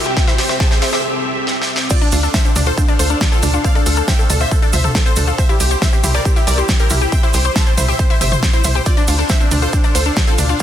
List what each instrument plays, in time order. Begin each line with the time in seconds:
Already playing: analog synth pad C3 C4 G4 E5, riser
0.06 supersaw synth G4, synth arpeggio sound G4, closed hi-hat
0.17 synth arpeggio sound C4, supersaw synth E5 G5, kick, snare, closed hi-hat
0.28 synth arpeggio sound E4, supersaw synth C5, snare, closed hi-hat
0.38 synth arpeggio sound G4, supersaw synth C5, snare, open hi-hat
0.49 supersaw synth C5, synth arpeggio sound C5, snare, closed hi-hat
0.60 synth arpeggio sound C4, supersaw synth C5 A5, kick, snare, closed hi-hat
0.71 synth arpeggio sound C4, supersaw synth C5, snare, closed hi-hat
0.82 synth arpeggio sound E4, supersaw synth C5, snare, open hi-hat, mid tom
0.93 synth arpeggio sound G4, supersaw synth C5 E5, snare
1.47 snare
1.62 snare
1.76 snare
1.90 synth arpeggio sound C4, analog synth pad D4 A4 C5 F5, supersaw synth F4 D5, synth pluck D5, kick, closed hi-hat, crash, cabasa
2.01 synth arpeggio sound D4, synth pluck D4, supersaw synth D4, closed hi-hat, cabasa
2.12 analog synth bass D2, synth pluck D4, supersaw synth D4, synth arpeggio sound F4, open hi-hat, cabasa
2.23 supersaw synth D4, synth pluck D4, synth arpeggio sound A4, closed hi-hat, cabasa
2.34 synth arpeggio sound C4, supersaw synth C5 E5, synth pluck E5, kick, snare, closed hi-hat, cabasa
2.45 synth arpeggio sound C4, supersaw synth D4, synth pluck D4, closed hi-hat, cabasa
2.56 analog synth bass D2, supersaw synth D4, synth arpeggio sound D4, synth pluck D4, open hi-hat, mid tom, cabasa
2.66 synth arpeggio sound F4, supersaw synth A4 C5, synth pluck C5, cabasa
2.77 synth arpeggio sound C4, supersaw synth D4, synth pluck D4, kick, closed hi-hat, cabasa
2.88 supersaw synth D4, synth arpeggio sound D4, synth pluck D4, closed hi-hat, cabasa
2.99 analog synth bass D2, synth arpeggio sound F4, supersaw synth A4 C5, synth pluck C5, open hi-hat, cabasa
3.10 supersaw synth D4, synth pluck D4, synth arpeggio sound A4, closed hi-hat, cabasa
3.21 synth arpeggio sound C4, supersaw synth D4, synth pluck D4, kick, snare, closed hi-hat, cabasa
3.32 synth arpeggio sound C4, supersaw synth F4 A4, synth pluck A4, closed hi-hat, cabasa
3.43 analog synth bass D2, synth arpeggio sound D4, supersaw synth D4, synth pluck D4, open hi-hat, mid tom, cabasa
3.54 supersaw synth D4, synth pluck D4, synth arpeggio sound F4, closed hi-hat, cabasa
3.64 synth arpeggio sound C4, supersaw synth D5 F5, synth pluck F5, kick, closed hi-hat, cabasa
3.75 synth arpeggio sound D4, supersaw synth A4, synth pluck A4, closed hi-hat, cabasa
3.86 analog synth bass D2, synth arpeggio sound F4, supersaw synth A4, synth pluck A4, open hi-hat, cabasa
3.96 supersaw synth A4, synth pluck A4, synth arpeggio sound A4, closed hi-hat, cabasa
4.08 synth arpeggio sound C4, supersaw synth E5 G5, synth pluck G5, kick, snare, closed hi-hat, cabasa
4.19 synth arpeggio sound C4, synth pluck A4, supersaw synth A4, closed hi-hat, cabasa
4.30 analog synth bass D2, synth arpeggio sound D4, supersaw synth A4, synth pluck A4, open hi-hat, mid tom, cabasa
4.40 synth arpeggio sound F4, supersaw synth C5 E5, synth pluck E5, closed hi-hat, cabasa
4.51 synth arpeggio sound C4, supersaw synth A4, synth pluck A4, kick, closed hi-hat, cabasa
4.62 synth arpeggio sound D4, synth pluck A4, supersaw synth A4, closed hi-hat, cabasa
4.73 analog synth bass D2, synth arpeggio sound F4, supersaw synth C5 E5, synth pluck E5, open hi-hat, mid tom, cabasa
4.84 synth pluck A4, supersaw synth A4, synth arpeggio sound A4, closed hi-hat, mid tom, cabasa
4.95 synth arpeggio sound C4, synth pluck A4, supersaw synth A4, kick, snare, closed hi-hat, cabasa
5.06 synth arpeggio sound C4, supersaw synth A4 C5, synth pluck C5, closed hi-hat, cabasa
5.16 analog synth bass D2, synth arpeggio sound D4, synth pluck A4, supersaw synth A4, open hi-hat, mid tom, cabasa
5.27 synth arpeggio sound F4, synth pluck A4, supersaw synth A4, closed hi-hat, cabasa
5.38 synth arpeggio sound C4, analog synth pad E4 G4, supersaw synth C5 E5, synth pluck E5, kick, closed hi-hat, cabasa
5.49 synth arpeggio sound E4, synth pluck G4, supersaw synth G4, closed hi-hat, cabasa
5.60 analog synth bass C2, synth pluck G4, synth arpeggio sound G4, supersaw synth G4, open hi-hat, cabasa
5.71 synth pluck G4, supersaw synth G4, synth arpeggio sound C5, cabasa
5.82 synth arpeggio sound C4, supersaw synth C5 E5, synth pluck E5, kick, snare, closed hi-hat, cabasa
5.92 synth arpeggio sound C4, synth pluck G4, supersaw synth G4, closed hi-hat, cabasa
6.03 analog synth bass C2, synth arpeggio sound E4, synth pluck G4, supersaw synth G4, open hi-hat, mid tom, cabasa
6.14 synth arpeggio sound G4, supersaw synth A#4 D5, synth pluck D5, closed hi-hat, cabasa
6.25 synth arpeggio sound C4, synth pluck G4, supersaw synth G4, kick, closed hi-hat, cabasa
6.36 synth arpeggio sound E4, supersaw synth G4, synth pluck G4, closed hi-hat, cabasa
6.47 analog synth bass C2, synth arpeggio sound G4, supersaw synth A#4 D5, synth pluck D5, open hi-hat, cabasa
6.58 supersaw synth G4, synth pluck G4, synth arpeggio sound C5, closed hi-hat, cabasa
6.68 synth arpeggio sound C4, supersaw synth G4, synth pluck G4, kick, snare, closed hi-hat, cabasa
6.79 synth arpeggio sound C4, supersaw synth G4 A#4, synth pluck A#4, closed hi-hat, cabasa
6.90 analog synth bass C2, synth arpeggio sound E4, synth pluck G4, supersaw synth G4, open hi-hat, mid tom, cabasa
7.01 synth pluck G4, synth arpeggio sound G4, supersaw synth G4, closed hi-hat, cabasa
7.12 synth arpeggio sound C4, supersaw synth E5 G5, synth pluck G5, kick, closed hi-hat, cabasa
7.23 synth arpeggio sound E4, synth pluck C5, supersaw synth C5, closed hi-hat, cabasa
7.33 analog synth bass C2, synth arpeggio sound G4, synth pluck C5, supersaw synth C5, open hi-hat, cabasa
7.45 synth arpeggio sound C5, supersaw synth C5, synth pluck C5, cabasa
7.56 synth arpeggio sound C4, supersaw synth C5 A5, synth pluck A5, kick, snare, closed hi-hat, cabasa
7.67 synth arpeggio sound C4, supersaw synth C5, synth pluck C5, closed hi-hat, cabasa
7.77 analog synth bass C2, synth arpeggio sound E4, synth pluck C5, supersaw synth C5, open hi-hat, mid tom, cabasa
7.88 synth arpeggio sound G4, supersaw synth C5 E5, synth pluck E5, closed hi-hat, cabasa
7.99 synth arpeggio sound C4, synth pluck C5, supersaw synth C5, kick, closed hi-hat, cabasa
8.10 synth arpeggio sound E4, supersaw synth C5, synth pluck C5, closed hi-hat, cabasa
8.21 analog synth bass G1, synth arpeggio sound G4, supersaw synth C5 E5, synth pluck E5, open hi-hat, mid tom, cabasa
8.32 supersaw synth C5, synth pluck C5, synth arpeggio sound C5, closed hi-hat, mid tom, cabasa
8.42 synth arpeggio sound C4, supersaw synth C5, synth pluck C5, kick, snare, closed hi-hat, cabasa
8.53 synth arpeggio sound C4, supersaw synth E4 C5, synth pluck C5, closed hi-hat, cabasa
8.64 analog synth bass C2, synth arpeggio sound E4, synth pluck C5, supersaw synth C5, open hi-hat, mid tom, cabasa
8.75 synth arpeggio sound G4, supersaw synth C5, synth pluck C5, cabasa
8.86 synth arpeggio sound C4, analog synth pad D4 A4 F5, supersaw synth F4 D5, synth pluck D5, kick, closed hi-hat, ride, cabasa
8.97 supersaw synth D4, synth pluck D4, synth arpeggio sound D4, closed hi-hat, cabasa
9.08 analog synth bass D2, supersaw synth D4, synth pluck D4, synth arpeggio sound F4, open hi-hat, ride, cabasa
9.19 supersaw synth D4, synth pluck D4, synth arpeggio sound A4, closed hi-hat, cabasa
9.29 synth arpeggio sound C4, supersaw synth C5 E5, synth pluck E5, kick, snare, closed hi-hat, ride, cabasa
9.40 synth arpeggio sound C4, supersaw synth D4, synth pluck D4, closed hi-hat, cabasa
9.51 analog synth bass D2, supersaw synth D4, synth arpeggio sound D4, synth pluck D4, open hi-hat, mid tom, ride, cabasa
9.62 synth arpeggio sound F4, supersaw synth A4 C5, synth pluck C5, closed hi-hat, cabasa
9.73 synth arpeggio sound C4, supersaw synth D4, synth pluck D4, kick, closed hi-hat, ride, cabasa
9.84 supersaw synth D4, synth arpeggio sound D4, synth pluck D4, closed hi-hat, cabasa
9.95 analog synth bass D2, synth arpeggio sound F4, supersaw synth A4 C5, synth pluck C5, open hi-hat, ride, cabasa
10.06 synth pluck D4, supersaw synth D4, synth arpeggio sound A4, closed hi-hat, cabasa
10.16 synth arpeggio sound C4, supersaw synth D4, synth pluck D4, kick, snare, closed hi-hat, ride, cabasa
10.27 synth arpeggio sound C4, supersaw synth F4 A4, synth pluck A4, closed hi-hat, cabasa
10.38 analog synth bass D2, synth pluck D4, supersaw synth D4, synth arpeggio sound D4, open hi-hat, mid tom, ride, cabasa
10.49 supersaw synth D4, synth pluck D4, synth arpeggio sound F4, closed hi-hat, cabasa
10.59 cabasa